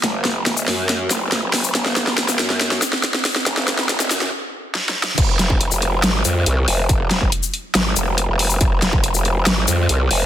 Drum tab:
CC |------------------------------------------------|------------------------------------------------|------------------------------------------------|x-----------------------------------------------|
HH |x-----x-----x-----o-----x-----x-----x-----o-----|x-----x-----x-----x-----x-----x-----x-----o-----|x-----x-----x-----o-----------------------------|x-----x-----x-----x-----x-----x-----x-----o-----|
SH |---------------x--------------x--------------x--|---------------x--------------x-----------------|---------------x--x-----------------------------|---------------x--------------x-----------------|
SD |o-----o-----o-----o-----o-----o-----o-----o-----|o--o--o--o--o--o--o--o--o--o--o--o--o--o--o--o--|o--o--o--o--o--o--o--o--------------o---o---o---|------o-----------------o-----------------------|
BD |------------------------------------------------|------------------------------------------------|------------------------------------------------|o--------o--------------------------------------|

CC |------------------------------------------------|------------------------------------------------|
HH |x-----x-----x-----x-----x-----x-----x-----o-----|x-----x-----x-----x-----x-----x-----x-----o-----|
SH |---------------x--------------x--------------x--|---------------x--------------x-----------------|
SD |------o-----------------o-----------------------|------o-----------------o-----------------------|
BD |o--------o--------------------------------------|o--------o--------------------------------------|